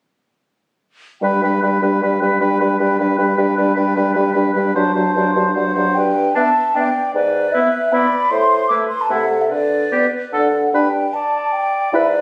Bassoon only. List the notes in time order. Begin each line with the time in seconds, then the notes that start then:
1.22 G2
1.41 G2
1.62 G2
1.82 G2
2.02 G2
2.22 G2
2.40 G2
2.60 G2
2.80 G2
2.99 G2
3.18 G2
3.38 G2
3.57 G2
3.76 G2
3.96 G2
4.16 G2
4.36 G2
4.56 G2
4.75 G2
4.96 G2
5.16 G2
5.36 G2
5.55 G2
5.76 G2
5.96 G2
7.14 G#2
8.31 A2
9.10 C3
9.50 D3
10.33 D3
10.73 G2
11.93 G#2